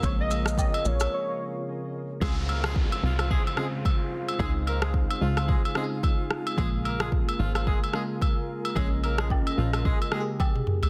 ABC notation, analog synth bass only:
X:1
M:4/4
L:1/16
Q:"Swing 16ths" 1/4=110
K:Db
V:1 name="Analog synth bass" clef=bass
B,,,4- B,,, z B,,,2 z8 | D,,4- D,, z C,,3 z6 z | D,,4- D,, z D,,3 z6 z | B,,,4- B,,, z A,,,3 z6 z |
B,,,4- B,,, z B,,,3 z6 z |]